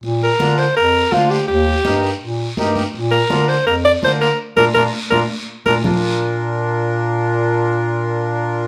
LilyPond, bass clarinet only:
\new Staff \with { instrumentName = "Bass clarinet" } { \clef bass \time 4/4 \key bes \major \tempo 4 = 165 bes,4 d4 f,4 d4 | ees,4 g,4 bes,4 g,4 | bes,4 d4 f,4 d4 | r8 bes,8 bes,8 r8 bes,8 r4 bes,8 |
bes,1~ | bes,1 | }